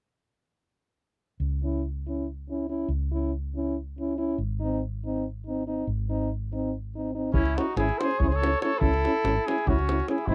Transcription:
1.40 C#2
1.63 C#4 E4
2.07 C#4 E4
2.50 C#4 E4
2.69 C#4 E4
2.88 C#2
3.11 C#4 E4
3.56 C#4 E4
3.99 C#4 E4
4.18 C#4 E4
4.38 G#1
4.60 C4 D#4
5.05 C4 D#4
5.47 C4 D#4
5.67 C4 D#4
5.87 G#1
6.10 C4 D#4
6.53 C4 D#4
6.95 C4 D#4
7.15 C4 D#4
7.33 C#2 C#4 E4, davul low
7.46 davul high
7.56 C#4 D#4 E4 F#4, davul high
7.76 G#1 C#4 E4 G#4, davul high
7.89 davul high
7.98 E4 G#4 C5, davul high
8.03 C#4
8.11 davul high
8.19 C#2 C#4 E4 G#4 C#5, davul low
8.27 G#4 C5
8.32 A4 C#5, davul high
8.42 C#4 E4, davul high
8.53 davul high
8.61 C#4 E4 A4 C#5, davul high
8.72 davul high
8.80 C#2 C#4 E4 A4, davul low
8.94 davul high
9.05 C#4 E4, davul high
9.24 G#1 C#4 E4, davul high
9.37 davul high
9.46 C#4 E4 G#4, davul high
9.58 davul high
9.67 C#2 C#4 E4 F#4, davul low
9.79 davul high
9.89 C#4 E4, davul high
10.00 davul high
10.08 C#4 E4 G#4, davul high
10.18 davul high
10.27 G#1 C4 D#4 E4, davul low

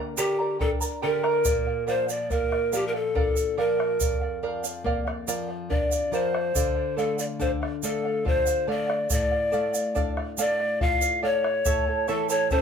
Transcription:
Already playing: D3 A#3 A#4 D5 A#5
0.18 D3 G4 A#4 D5 G5 A#5, shaker
0.39 A#4 D5 A#5, bombo rim
0.59 D4 A4 A#4 D5 G5 A#5, bombo low
0.81 A#4 D5 A#5, shaker
1.02 D3 G4 A#4 D5 G5 A#5, bombo rim
1.23 A#4 D5 A#5, bombo rim
1.45 A#2 A#4 D5 F5, bombo rim, bombo low, shaker
1.67 D5 F5
1.87 F3 A#4 C5 D5 F5, bombo rim, shaker
2.08 D5 F5, shaker
2.30 A#3 A#4 D5 F5, bombo rim, bombo low, shaker
2.51 D5 F5, bombo rim
2.72 F3 G4 A#4 D5 F5, shaker
2.87 A#4
2.93 A4 D5 F5, bombo rim
3.15 D4 A#4 D5 F5, bombo low
3.36 D5 F5, shaker
3.57 F3 A#4 D5 F5, bombo rim
3.79 D5 F5, bombo rim
4.00 F2 A#4 D5 F5, bombo low, shaker
4.21 D5 F5
4.43 F3 A#4 D5 F5
4.64 D5 F5, shaker
4.84 A#3 A#4 D5 F5, bombo rim, bombo low
5.07 D5 F5, bombo rim
5.27 F3 A#4 D5 F5, shaker
5.48 D5 F5, bombo rim
5.69 D4 A#4 D5 F5, bombo low
5.91 D5 F5, bombo rim, shaker
6.12 F3 A#4 C5 D5 F5, bombo rim, shaker
6.34 D5 F5, bombo rim
6.55 D3 A4 D5 F5, bombo rim, bombo low, shaker
6.76 D5 F5
6.97 A3 A4 D5 F5, bombo rim, shaker
7.19 D5 F5, shaker
7.39 D4 A4 C5 D5 F5, bombo rim, bombo low, shaker
7.62 D5 F5, bombo rim
7.83 A3 A4 D5 F5, shaker
8.05 D5 F5, bombo rim
8.25 F4 A4 C5 D5 F5, bombo low
8.46 D5 F5, shaker
8.67 A3 A4 D5 F5, bombo rim
8.88 D5 F5, bombo rim
9.10 A2 A4 D5 F5, bombo rim, bombo low, shaker
9.31 D5 F5
9.52 A3 A4 D5 F5, bombo rim, shaker
9.74 D5 F5, shaker
9.95 D4 A4 D5 F5, bombo rim, bombo low, shaker
10.17 D5 F5, bombo rim
10.38 A3 A4 D5 F5, shaker
10.60 D5 F5, bombo rim
10.80 F4 A4 D5 F5, bombo low
11.01 D5 F5, shaker
11.22 A3 A4 C#5 D5 F5, bombo rim
11.44 D5 F5, bombo rim
11.65 A2 E4 A4 C#5 E5 A5, bombo rim, bombo low, shaker
11.87 E4 A4 A5
12.08 E3 E4 A4 C#5 E5 A5, bombo rim, shaker
12.29 E4 A4 C#5 A5, shaker
12.51 C#4 E4 A4 C5 E5 A5, bombo rim, bombo low, shaker

